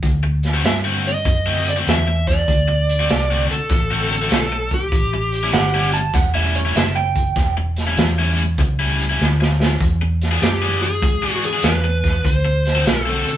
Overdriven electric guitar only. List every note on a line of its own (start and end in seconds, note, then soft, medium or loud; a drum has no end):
0.23 muted overdriven electric guitar stroke soft
0.54 0.63 D3 medium
0.54 0.63 A3 medium
0.54 0.64 C4 medium
0.54 0.64 F#4 medium
0.64 muted overdriven electric guitar stroke soft
0.84 1.08 D3 medium
0.84 1.08 A3 medium
0.84 1.08 C4 medium
0.84 1.08 F#4 medium
1.26 muted overdriven electric guitar stroke soft
1.46 1.70 D3 medium
1.46 1.70 A3 medium
1.46 1.69 C4 medium
1.46 1.69 F#4 medium
1.76 1.93 D3 medium
1.76 1.93 A3 medium
1.76 1.93 C4 medium
1.76 1.93 F#4 medium
2.07 muted overdriven electric guitar stroke soft
2.68 muted overdriven electric guitar stroke soft
2.99 3.09 D3 medium
2.99 3.09 A3 medium
2.99 3.09 C4 medium
2.99 3.09 F#4 medium
3.10 muted overdriven electric guitar stroke soft
3.31 3.54 D3 medium
3.31 3.54 A3 medium
3.31 3.53 C4 medium
3.31 3.53 F#4 medium
3.71 muted overdriven electric guitar stroke soft
3.91 4.15 D3 medium
3.91 4.14 A3 medium
3.91 4.14 C4 medium
3.91 4.14 F#4 medium
4.21 4.38 D3 medium
4.21 4.38 A3 medium
4.21 4.38 C4 medium
4.21 4.38 F#4 medium
4.52 muted overdriven electric guitar stroke medium
5.13 muted overdriven electric guitar stroke soft
5.43 5.52 A2 medium
5.43 5.52 G3 medium
5.43 5.52 C#4 medium
5.43 5.53 E4 medium
5.53 muted overdriven electric guitar stroke soft
5.74 5.98 A2 medium
5.74 5.98 G3 medium
5.74 5.97 C#4 medium
5.74 5.97 E4 medium
6.15 muted overdriven electric guitar stroke soft
6.34 6.58 A2 medium
6.34 6.58 G3 medium
6.34 6.58 C#4 medium
6.34 6.58 E4 medium
6.65 6.82 A2 medium
6.65 6.82 G3 medium
6.65 6.82 C#4 medium
6.65 6.81 E4 medium
6.96 muted overdriven electric guitar stroke medium
7.57 muted overdriven electric guitar stroke medium
7.87 7.97 A2 medium
7.87 7.96 G3 medium
7.87 7.97 C#4 medium
7.87 7.97 E4 medium
7.98 muted overdriven electric guitar stroke soft
8.18 8.42 A2 medium
8.18 8.42 G3 medium
8.18 8.42 C#4 medium
8.18 8.42 E4 medium
8.59 muted overdriven electric guitar stroke soft
8.79 9.03 A2 medium
8.79 9.03 G3 medium
8.79 9.03 C#4 medium
8.79 9.02 E4 medium
9.09 9.26 A2 medium
9.09 9.26 G3 medium
9.09 9.26 C#4 medium
9.09 9.26 E4 medium
9.40 muted overdriven electric guitar stroke soft
10.02 muted overdriven electric guitar stroke soft
10.31 10.41 E3 medium
10.31 10.41 B3 medium
10.31 10.42 D4 medium
10.31 10.42 G#4 medium
10.42 muted overdriven electric guitar stroke soft
10.62 10.86 E3 medium
10.62 10.86 B3 medium
10.62 10.85 D4 medium
10.62 10.85 G#4 medium
11.02 muted overdriven electric guitar stroke soft
11.22 11.47 E3 medium
11.22 11.46 B3 medium
11.22 11.46 D4 medium
11.22 11.46 G#4 medium
11.53 11.70 E3 medium
11.53 11.70 B3 medium
11.53 11.70 D4 medium
11.53 11.70 G#4 medium
11.84 muted overdriven electric guitar stroke soft
12.45 muted overdriven electric guitar stroke soft
12.75 12.85 D3 medium
12.75 12.85 C4 medium
12.75 12.85 F#4 medium
12.75 12.85 A4 medium
12.86 muted overdriven electric guitar stroke soft
13.06 13.30 D3 medium
13.06 13.30 C4 medium
13.06 13.29 F#4 medium
13.06 13.29 A4 medium